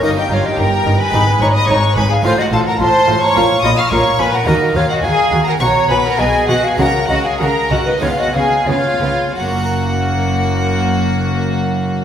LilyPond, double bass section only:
\new Staff \with { instrumentName = "Double bass section" } { \clef bass \time 4/4 \key fis \major \tempo 4 = 104 g,,8 g,,8 g,,8 g,,8 gis,,8 gis,,8 gis,,8 gis,,8 | a,,8 a,,8 a,,8 a,,8 ais,,8 ais,,8 ais,,8 ais,,8 | dis,8 dis,8 dis,8 dis,8 b,,8 b,,8 b,,8 b,,8 | cis,8 cis,8 cis,8 cis,8 cis,8 cis,8 cis,8 cis,8 |
fis,,1 | }